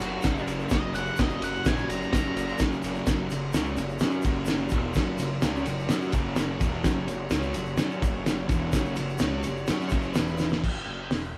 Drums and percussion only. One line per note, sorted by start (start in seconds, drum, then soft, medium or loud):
0.00 ride medium
0.00 shaker medium
0.22 kick loud
0.22 snare loud
0.22 ride loud
0.22 shaker loud
0.37 shaker soft
0.48 ride medium
0.48 shaker medium
0.59 shaker soft
0.69 kick loud
0.69 snare loud
0.69 ride loud
0.69 shaker loud
0.94 ride medium
0.94 shaker medium
1.06 shaker soft
1.16 kick loud
1.16 snare loud
1.16 ride loud
1.16 shaker medium
1.29 shaker soft
1.42 ride medium
1.42 shaker medium
1.55 shaker soft
1.65 kick loud
1.65 snare loud
1.65 ride loud
1.65 shaker medium
1.78 shaker soft
1.90 ride medium
1.90 shaker medium
2.02 shaker soft
2.13 kick loud
2.13 snare loud
2.13 ride loud
2.13 shaker loud
2.37 ride medium
2.37 shaker medium
2.48 shaker soft
2.58 kick loud
2.58 snare loud
2.58 ride loud
2.58 shaker medium
2.72 shaker soft
2.82 ride medium
2.82 shaker medium
2.95 shaker soft
3.06 kick loud
3.06 snare loud
3.06 ride loud
3.06 shaker loud
3.30 ride medium
3.30 shaker medium
3.53 snare loud
3.53 ride loud
3.53 shaker medium
3.65 shaker soft
3.77 ride medium
3.77 shaker medium
3.89 shaker soft
3.99 snare loud
3.99 ride loud
3.99 shaker loud
4.22 kick loud
4.22 ride medium
4.22 shaker medium
4.45 snare loud
4.45 ride loud
4.45 shaker loud
4.69 kick loud
4.69 ride medium
4.69 shaker medium
4.94 kick loud
4.94 snare loud
4.94 ride loud
4.94 shaker loud
5.18 ride medium
5.18 shaker medium
5.42 snare loud
5.42 ride loud
5.42 shaker medium
5.56 shaker soft
5.66 ride medium
5.66 shaker medium
5.79 shaker soft
5.89 snare loud
5.89 ride loud
5.89 shaker loud
6.01 shaker soft
6.12 kick loud
6.12 ride medium
6.12 shaker medium
6.36 snare loud
6.36 ride loud
6.36 shaker medium
6.61 kick loud
6.61 ride medium
6.61 shaker medium
6.84 kick loud
6.84 snare loud
6.84 ride loud
6.84 shaker medium
7.08 ride medium
7.08 shaker medium
7.30 snare loud
7.30 ride loud
7.30 shaker medium
7.42 shaker soft
7.54 ride medium
7.54 shaker medium
7.65 shaker soft
7.77 snare loud
7.77 ride loud
7.77 shaker medium
7.91 shaker soft
8.02 kick loud
8.02 ride medium
8.02 shaker medium
8.26 snare loud
8.26 ride loud
8.26 shaker loud
8.49 kick loud
8.49 ride medium
8.49 shaker medium
8.72 kick loud
8.72 snare loud
8.72 ride loud
8.72 shaker loud
8.85 shaker soft
8.95 ride medium
8.95 shaker medium
9.09 shaker soft
9.18 snare loud
9.18 ride loud
9.18 shaker medium
9.43 ride medium
9.43 shaker medium
9.56 shaker soft
9.67 snare loud
9.67 ride loud
9.67 shaker medium
9.81 shaker soft
9.89 kick loud
9.89 ride medium
9.89 shaker medium
10.01 shaker soft
10.14 snare loud
10.14 ride loud
10.14 shaker loud
10.27 shaker soft
10.38 snare medium
10.38 shaker medium
10.49 snare medium
10.49 shaker soft
10.64 kick loud
10.64 crash loud
11.11 snare loud
11.11 open hi-hat soft